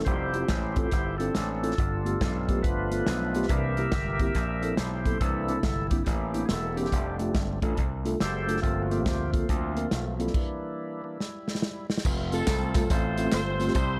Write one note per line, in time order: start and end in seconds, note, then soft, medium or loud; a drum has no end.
0.05 0.43 F1 medium
0.05 0.38 F3 medium
0.05 0.39 G3 soft
0.05 0.39 C4 medium
0.05 1.17 E4 medium
0.05 1.17 G4 medium
0.05 1.15 C5 loud
0.05 kick medium
0.05 closed hi-hat medium
0.34 0.45 C4 medium
0.34 0.45 E4 medium
0.34 0.46 F4 medium
0.34 0.46 G4 medium
0.34 closed hi-hat soft
0.48 0.86 A1 medium
0.48 kick medium
0.48 snare loud
0.48 closed hi-hat medium
0.76 0.88 C4 medium
0.76 0.88 E4 medium
0.76 0.88 F4 medium
0.76 0.89 A4 loud
0.76 kick loud
0.76 closed hi-hat medium
0.91 1.29 G1 medium
0.91 kick loud
0.91 snare soft
0.91 closed hi-hat medium
1.18 1.31 C4 medium
1.18 1.75 C4 medium
1.18 1.74 D4 medium
1.18 1.31 E4 medium
1.18 1.31 F4 medium
1.18 1.74 A4 medium
1.18 1.32 A4 medium
1.18 closed hi-hat medium
1.35 1.72 A1 medium
1.35 snare loud
1.35 closed hi-hat loud
1.62 1.74 C4 medium
1.62 1.74 E4 medium
1.62 1.74 F4 medium
1.62 1.74 A4 medium
1.62 closed hi-hat medium
1.71 snare soft
1.75 2.15 G1 medium
1.75 2.44 G2 medium
1.75 2.60 D4 medium
1.75 2.60 F4 medium
1.75 2.65 A4 loud
1.75 kick medium
1.75 closed hi-hat medium
2.05 2.16 A3 medium
2.05 2.17 B3 medium
2.05 2.17 F4 medium
2.05 2.17 G4 medium
2.05 closed hi-hat medium
2.21 2.66 B1 medium
2.21 kick medium
2.21 snare loud
2.21 closed hi-hat medium
2.48 3.46 F3 soft
2.48 2.60 A3 medium
2.48 3.46 A3 soft
2.48 2.60 B3 medium
2.48 3.46 B3 medium
2.48 2.60 F4 medium
2.48 2.60 G4 loud
2.48 kick medium
2.48 closed hi-hat medium
2.63 3.00 G1 medium
2.63 3.46 D4 medium
2.63 3.46 F4 medium
2.63 3.51 B4 medium
2.63 kick medium
2.63 closed hi-hat medium
2.91 3.02 A3 medium
2.91 3.03 B3 medium
2.91 3.03 F4 medium
2.91 3.03 A4 medium
2.91 closed hi-hat medium
3.07 3.43 B1 medium
3.07 snare loud
3.07 closed hi-hat loud
3.34 3.45 A3 medium
3.34 3.45 B3 medium
3.34 3.46 F4 medium
3.34 3.46 G4 loud
3.34 closed hi-hat medium
3.42 snare soft
3.49 3.86 C2 medium
3.49 4.16 C3 medium
3.49 3.82 E3 medium
3.49 3.82 A#3 soft
3.49 3.82 D4 medium
3.49 4.75 G4 medium
3.49 4.75 A#4 medium
3.49 4.81 E5 loud
3.49 kick medium
3.49 closed hi-hat medium
3.77 3.88 A#3 medium
3.77 3.88 C4 medium
3.77 3.89 E4 medium
3.77 3.89 G4 medium
3.77 closed hi-hat medium
3.92 4.29 G1 medium
3.92 kick medium
3.92 snare loud
3.92 closed hi-hat medium
4.19 4.31 A#3 medium
4.19 4.31 C4 medium
4.19 4.31 E4 medium
4.19 4.32 G4 loud
4.19 kick medium
4.19 closed hi-hat medium
4.35 4.71 A#1 medium
4.35 kick medium
4.35 snare soft
4.35 closed hi-hat medium
4.62 4.73 A#3 medium
4.62 4.74 C4 medium
4.62 4.74 E4 medium
4.62 4.74 A4 loud
4.62 closed hi-hat medium
4.77 5.14 B1 medium
4.77 5.18 E4 medium
4.77 5.18 G4 medium
4.77 5.22 C5 medium
4.77 snare loud
4.77 closed hi-hat loud
5.05 5.16 A#3 medium
5.05 5.17 C4 medium
5.05 5.17 E4 medium
5.05 5.17 A4 medium
5.05 kick medium
5.05 closed hi-hat medium
5.20 5.57 C2 medium
5.20 5.87 C3 medium
5.20 5.53 E3 medium
5.20 5.53 A#3 soft
5.20 5.54 D4 medium
5.20 6.03 E4 medium
5.20 5.87 A4 loud
5.20 kick medium
5.20 closed hi-hat medium
5.48 5.59 A#3 medium
5.48 5.59 C4 medium
5.48 5.60 D4 medium
5.48 5.60 E4 medium
5.48 closed hi-hat medium
5.63 6.00 G1 medium
5.63 kick medium
5.63 snare loud
5.63 closed hi-hat medium
5.90 6.02 A#3 medium
5.90 6.02 C4 medium
5.90 6.03 D4 medium
5.90 6.03 E4 medium
5.90 5.98 G4 medium
5.90 kick loud
5.90 closed hi-hat medium
6.05 6.43 A1 medium
6.05 6.88 A#3 medium
6.05 6.88 E4 medium
6.05 6.46 G4 medium
6.05 kick medium
6.05 snare soft
6.05 closed hi-hat medium
6.33 6.45 A#3 medium
6.33 6.45 C4 medium
6.33 6.45 D4 medium
6.33 6.46 E4 medium
6.33 closed hi-hat medium
6.46 6.49 G#4 medium
6.46 6.78 A4 medium
6.46 snare loud
6.46 closed hi-hat loud
6.50 6.86 E1 medium
6.76 6.87 A#3 medium
6.76 6.88 C4 medium
6.76 7.59 C4 medium
6.76 6.88 D4 medium
6.76 6.92 D4 medium
6.76 7.17 G4 medium
6.76 6.88 G4 medium
6.76 closed hi-hat medium
6.85 snare soft
6.92 7.29 F1 medium
6.92 7.59 G3 medium
6.92 7.59 A3 medium
6.92 7.60 D4 medium
6.92 kick medium
6.92 closed hi-hat medium
7.19 7.31 A3 medium
7.19 7.31 D4 medium
7.19 7.31 F4 medium
7.19 7.31 G4 medium
7.19 closed hi-hat medium
7.35 7.58 G1 medium
7.35 kick loud
7.35 snare loud
7.35 closed hi-hat medium
7.62 7.75 A1 medium
7.62 7.73 A3 medium
7.62 7.73 D4 medium
7.62 7.74 F4 medium
7.62 7.74 A4 medium
7.62 kick loud
7.62 closed hi-hat medium
7.77 8.14 C2 medium
7.77 kick medium
7.77 closed hi-hat medium
8.05 8.16 A3 medium
8.05 8.16 D4 medium
8.05 8.17 F4 medium
8.05 8.17 A4 medium
8.05 closed hi-hat medium
8.20 8.57 F#1 medium
8.20 8.60 G4 medium
8.20 8.60 A4 medium
8.20 8.60 C5 loud
8.20 snare loud
8.20 closed hi-hat medium
8.47 8.58 A3 medium
8.47 8.59 D4 medium
8.47 8.59 F4 medium
8.47 8.59 A4 medium
8.47 closed hi-hat medium
8.57 snare soft
8.62 9.06 G1 medium
8.62 9.30 G2 medium
8.62 10.30 F3 medium
8.62 9.32 A3 medium
8.62 8.91 A#3 medium
8.62 8.91 C4 medium
8.62 9.32 F4 medium
8.62 8.82 A4 loud
8.62 kick medium
8.62 closed hi-hat medium
8.83 8.91 F#4 medium
8.90 9.01 A#3 medium
8.90 9.32 A#3 medium
8.90 9.01 C4 medium
8.90 9.73 C4 medium
8.90 9.02 F4 medium
8.90 9.31 G4 loud
8.90 9.02 A4 medium
8.90 closed hi-hat medium
9.06 9.42 D2 medium
9.06 kick medium
9.06 snare loud
9.06 closed hi-hat medium
9.33 10.15 A3 medium
9.33 9.44 A#3 medium
9.33 10.15 A#3 medium
9.33 9.45 C4 medium
9.33 9.92 F4 medium
9.33 9.45 F4 medium
9.33 9.45 A4 medium
9.33 kick medium
9.33 closed hi-hat medium
9.49 9.85 D2 medium
9.49 kick loud
9.49 closed hi-hat medium
9.75 9.87 A#3 medium
9.75 9.87 C4 medium
9.75 9.87 F4 medium
9.75 9.88 A#4 medium
9.75 closed hi-hat medium
9.91 10.28 B1 medium
9.91 10.05 F4 medium
9.91 snare loud
9.91 closed hi-hat loud
10.18 11.87 G3 medium
10.18 10.30 A#3 medium
10.18 10.35 A#3 medium
10.18 10.30 C4 medium
10.18 11.87 E4 medium
10.18 10.30 F4 medium
10.18 10.31 A4 medium
10.18 closed hi-hat medium
10.27 snare soft
10.34 11.02 E3 medium
10.34 11.02 A#3 medium
10.34 11.02 D4 medium
10.34 kick medium
10.34 crash medium
11.04 11.18 E3 soft
11.04 11.18 A#3 soft
11.04 11.18 D4 soft
11.20 snare medium
11.48 snare medium
11.55 snare medium
11.62 snare medium
11.90 snare medium
11.98 snare medium
12.05 12.41 F1 loud
12.05 13.73 A3 medium
12.05 14.00 C4 medium
12.05 13.73 F4 medium
12.05 kick loud
12.05 crash medium
12.05 tambourine medium
12.32 12.43 A3 medium
12.32 12.43 C4 medium
12.32 13.14 C4 medium
12.32 12.44 F4 medium
12.32 12.90 F4 medium
12.32 12.86 A4 medium
12.32 12.44 A4 medium
12.32 closed hi-hat medium
12.32 tambourine medium
12.47 12.84 C2 medium
12.47 kick medium
12.47 snare loud
12.47 clap loud
12.47 closed hi-hat medium
12.47 tambourine medium
12.75 12.86 A3 medium
12.75 12.86 C4 medium
12.75 12.86 F4 medium
12.75 12.87 A4 medium
12.75 kick loud
12.75 clap medium
12.75 closed hi-hat medium
12.75 tambourine medium
12.90 13.26 A1 medium
12.90 13.32 F4 medium
12.90 13.32 A4 medium
12.90 13.31 C5 loud
12.90 kick loud
12.90 closed hi-hat medium
12.90 tambourine medium
13.17 13.23 A3 medium
13.17 13.23 C4 medium
13.17 13.23 F4 medium
13.17 13.24 A4 medium
13.17 closed hi-hat medium
13.17 tambourine soft
13.24 13.38 A3 medium
13.24 13.39 C4 medium
13.24 13.39 F4 medium
13.24 13.39 A4 medium
13.32 13.69 G1 medium
13.32 13.72 F4 medium
13.32 13.72 A4 medium
13.32 13.72 C5 loud
13.32 snare loud
13.32 clap medium
13.32 closed hi-hat loud
13.32 tambourine loud
13.59 13.65 A3 medium
13.59 13.65 C4 medium
13.59 13.66 F4 medium
13.59 13.66 C5 medium
13.59 closed hi-hat medium
13.59 tambourine medium
13.66 13.74 A3 medium
13.66 13.75 C4 medium
13.66 13.75 F4 medium
13.66 13.76 G4 medium
13.66 snare soft
13.74 14.00 C2 loud
13.74 14.00 C3 medium
13.74 14.00 G3 medium
13.74 14.00 E4 medium
13.74 14.00 G4 medium
13.74 14.00 C5 loud
13.74 kick medium
13.74 closed hi-hat medium
13.74 tambourine medium